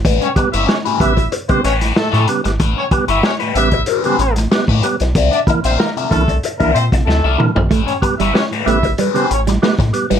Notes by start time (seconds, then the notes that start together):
0.05 A1 A2 C#4 G4 B4, kick, closed hi-hat
0.21 C#4 C#5, closed hi-hat
0.36 G3 B3, muted overdriven electric guitar stroke, kick, closed hi-hat
0.52 G1 C#4 E4 G4 B4 E5, closed hi-hat
0.67 G3 B3 C#4 C#5, muted overdriven electric guitar stroke, snare
0.86 A2 C#4 G4 B4, closed hi-hat
0.99 A1 C#3 G3 B3 E4 E5, muted overdriven electric guitar stroke, kick, closed hi-hat
1.17 muted overdriven electric guitar stroke, kick, closed hi-hat
1.32 muted overdriven electric guitar stroke, closed hi-hat
1.48 C#3 G3 B3 C4 C5, muted overdriven electric guitar stroke, kick, closed hi-hat
1.64 A1 C#4 G4 B4 C#5, closed hi-hat
1.81 A2 C#4 G4 B4, snare, closed hi-hat
1.95 A2 A3 A4, muted overdriven electric guitar stroke, snare
2.12 A2 C#4 G4 B4, snare, closed hi-hat
2.27 C#3 G3 B3, muted overdriven electric guitar stroke, closed hi-hat
2.44 G#1 G3 B3, muted overdriven electric guitar stroke, snare, closed hi-hat
2.60 A1 A2 C#4 G4 B4, kick, closed hi-hat
2.77 C#4 C#5
2.91 G3 B3, muted overdriven electric guitar stroke, kick, closed hi-hat
3.08 G1 C#4 E4 G4 B4 E5, closed hi-hat
3.23 G3 B3 C#4 C#5, muted overdriven electric guitar stroke, snare
3.40 A2 C#4 G4 B4, closed hi-hat
3.55 A1 C#3 G3 B3 E4 E5, muted overdriven electric guitar stroke, closed hi-hat
3.71 muted overdriven electric guitar stroke, kick, closed hi-hat
3.86 C4 F#4 A#4, closed hi-hat
4.00 C#4 G4 B4 C5, closed hi-hat
4.04 C#3 G3 B3 C4
4.19 A1 C#4 C#5, muted overdriven electric guitar stroke, closed hi-hat
4.36 A2, muted overdriven electric guitar stroke, snare, closed hi-hat
4.51 G3 B3, muted overdriven electric guitar stroke, snare
4.68 A2 C#4 G4 B4, kick
4.83 G3 B3, muted overdriven electric guitar stroke, closed hi-hat
5.00 B1, muted overdriven electric guitar stroke, snare, closed hi-hat
5.15 C2 C3 A#4 D5 E5, kick, closed hi-hat
5.31 D4 D5, closed hi-hat
5.47 E3 A#3, muted overdriven electric guitar stroke, kick, closed hi-hat
5.63 A#1 C4 A#4 C5 D5 E5, closed hi-hat
5.78 E3 A#3 A#4, muted overdriven electric guitar stroke, snare
5.96 C3 A#4 D5 E5, closed hi-hat
6.10 C2 D3 E3 A3 A#3 A4, muted overdriven electric guitar stroke, kick, closed hi-hat
6.28 muted overdriven electric guitar stroke, kick, closed hi-hat
6.43 muted overdriven electric guitar stroke, closed hi-hat
6.59 C2 D3 E3 A#3 A#4 D5 E5, kick, closed hi-hat
6.73 A#2 C4 C5, muted overdriven electric guitar stroke, closed hi-hat
6.91 A#1 C3, muted overdriven electric guitar stroke, kick, snare, closed hi-hat
7.05 D2 C3 A3 A4, muted overdriven electric guitar stroke
7.09 snare
7.24 C2 A#4 D5 E5
7.38 D3 E3 A#3, muted overdriven electric guitar stroke, mid tom
7.55 A#1 E3 A#3, muted overdriven electric guitar stroke, floor tom
7.70 A1 A2 A3 C#4 G4 B4, kick, closed hi-hat
7.86 C#4 C#5, closed hi-hat
8.02 G3 B3, muted overdriven electric guitar stroke, muted clean electric guitar stroke, kick, closed hi-hat
8.18 G1 G3 C#4 E4 G4 B4 E5, closed hi-hat
8.33 G3 B3 C#4 C#5, muted overdriven electric guitar stroke, snare
8.51 A2 C#4 G4 B4, closed hi-hat
8.65 A1 C#3 G3 A3 B3 E4 E5, muted overdriven electric guitar stroke, closed hi-hat
8.83 muted overdriven electric guitar stroke, kick, closed hi-hat
8.98 G3 C#4 G4 B4, closed hi-hat
9.14 C#3 G3 B3 C4 C5, muted clean electric guitar stroke, closed hi-hat
9.31 A1 C#4 C#5, muted overdriven electric guitar stroke, closed hi-hat
9.47 A2 G3, muted overdriven electric guitar stroke, snare, closed hi-hat
9.62 G3 A3 B3, muted overdriven electric guitar stroke, snare
9.79 A2, muted clean electric guitar stroke, muted overdriven electric guitar stroke, kick, snare, closed hi-hat
9.93 G3 B3, closed hi-hat
10.10 G#1 G3 C#4 G4 B4, snare, closed hi-hat